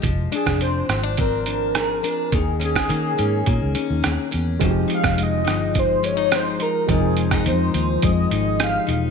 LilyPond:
<<
  \new Staff \with { instrumentName = "Soft synth lead" } { \time 4/4 \key f \minor \tempo 4 = 105 r8 aes'8 c''4 bes'2 | aes'8 aes'2. r8 | r8 f''8 ees''4 c''8 des''8 c''8 bes'8 | aes'4 c''4 ees''4 f''8. r16 | }
  \new Staff \with { instrumentName = "Upright piano" } { \time 4/4 \key f \minor r1 | r1 | <aes c' ees' ges' g'>1 | <aes c' ees' bes'>1 | }
  \new Staff \with { instrumentName = "Steel-string acoustic guitar" } { \time 4/4 \key f \minor f8 d'8 c'8 c'16 d'16 c'8 d'8 aes'8 d'8 | ees8 des'8 bes8 des'8 bes8 des'8 aes'8 des'8 | f8 ees'8 aes8 ees'8 aes8 des'16 ees'8. ees'8 | f8 des'16 ees'16 aes8 ees'8 aes8 ees'8 g'8 ees'8 | }
  \new Staff \with { instrumentName = "Fingered electric bass" } { \clef bass \time 4/4 \key f \minor f,,8 r16 f,,8. aes,,2 r8 | ees,4 ees8 aes,8 bes,16 des,16 r16 ees,16 ees,16 r16 e,8 | f,,8 r16 f,,8. g,,2 r8 | f,,4 f,8 ees,8 f,8 aes,,4 e,,8 | }
  \new DrumStaff \with { instrumentName = "Drums" } \drummode { \time 4/4 <hh bd>8 hh16 <bd ss>16 hh8 <hh ss>8 <hh bd>8 hh8 <hh ss>8 hh8 | <hh bd>8 hh16 <bd ss>16 hh8 hh8 <hh bd>8 hh8 <hh ss>8 hh8 | <hh bd>8 hh16 <bd ss>16 hh8 <hh ss>8 <hh bd>8 hh8 <hh ss>8 hh8 | <hh bd>8 hh16 <bd ss>16 hh8 hh8 <hh bd>8 hh8 <hh ss>8 hh8 | }
>>